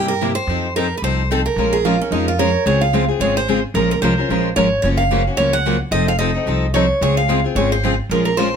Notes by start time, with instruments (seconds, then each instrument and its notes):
Already playing: upright bass G2, steel-string acoustic guitar C3 G3 A#3 E4 G4
0.08 steel-string acoustic guitar A#4
0.21 steel-string acoustic guitar C3 G3 A#3 E4 G4
0.35 steel-string acoustic guitar C5
0.47 upright bass F2, steel-string acoustic guitar F3 C4 D#4 A4
0.76 steel-string acoustic guitar F3 C4 D#4 A4 A#4
0.97 steel-string acoustic guitar B4
1.02 upright bass C2, steel-string acoustic guitar F3 C4 D#4 A4 C5
1.31 steel-string acoustic guitar F3 C4 D#4 A4
1.46 steel-string acoustic guitar A#4
1.56 upright bass A#1, steel-string acoustic guitar F3 G#3 C#4 F4 A#4
1.73 steel-string acoustic guitar G#4
1.85 steel-string acoustic guitar F3 G#3 C#4 F4 A#4
2.01 steel-string acoustic guitar C#4
2.11 upright bass F2, steel-string acoustic guitar F3 G#3 C#4 D#4 F4 A#4
2.28 steel-string acoustic guitar F4
2.39 steel-string acoustic guitar F3 G#3 C#4 F4 A#4 C#5
2.65 upright bass C#2, steel-string acoustic guitar C#3 G#3 C4 F4 G#4 C#5
2.81 steel-string acoustic guitar F5
2.93 steel-string acoustic guitar C#3 G#3 C4 F4 G#4
3.08 steel-string acoustic guitar C4 F4 G#4
3.20 upright bass G#1, steel-string acoustic guitar C#3 G#3 C4 F4 G#4 C#5
3.37 steel-string acoustic guitar C5
3.48 steel-string acoustic guitar C#3 G#3 C4 F4 G#4
3.74 upright bass A#1, steel-string acoustic guitar F3 G#3 C#4 F4 A#4
3.91 steel-string acoustic guitar A#4
4.02 upright bass C2, steel-string acoustic guitar F3 G#3 C#4 F4 A#4 C5
4.18 steel-string acoustic guitar C#4 F4 A#4
4.29 upright bass A#1, steel-string acoustic guitar F3 G#3 C#4 F4 A#4
4.56 upright bass G#1, steel-string acoustic guitar F3 G#3 C#4 F4 A#4 C#5
4.82 upright bass F#1, steel-string acoustic guitar C#3 F3 F#3 A#3 C#4 F4 F#4 A#4 C#5
4.97 steel-string acoustic guitar F5
5.11 steel-string acoustic guitar C#3 F3 F#3 A#3 C#4 F4 F#4 A#4
5.27 steel-string acoustic guitar A#3 C#4 F#4
5.37 upright bass C#2, steel-string acoustic guitar C#3 F3 F#3 A#3 C#4 F4 F#4 A#4 C#5
5.53 steel-string acoustic guitar F#5
5.66 steel-string acoustic guitar C#3 F3 F#3 A#3 C#4 F4 F#4 A#4
5.91 upright bass F1, steel-string acoustic guitar F3 C4 D#4 A4 D#5
6.08 steel-string acoustic guitar F5
6.19 steel-string acoustic guitar F3 C4 D#4 A4 D#5
6.34 steel-string acoustic guitar C4 D#4 A4
6.46 upright bass C2, steel-string acoustic guitar F3 C4 D#4 A4
6.74 steel-string acoustic guitar F3 C4 D#4 A4 C#5
7.01 upright bass C#2, steel-string acoustic guitar C#3 G#3 C4 F4 G#4 C#5
7.17 steel-string acoustic guitar F5
7.28 steel-string acoustic guitar C#3 G#3 C4 F4 G#4
7.44 steel-string acoustic guitar C4 F4 G#4
7.55 upright bass G#1, steel-string acoustic guitar C#3 G#3 C4 F4 G#4 C#5
7.72 steel-string acoustic guitar C5
7.83 steel-string acoustic guitar C#3 G#3 C4 F4 G#4
8.09 upright bass A#1, steel-string acoustic guitar F3 G#3 C#4 F4 A#4
8.25 steel-string acoustic guitar A#4
8.37 steel-string acoustic guitar F3 G#3 C#4 F4 A#4 C5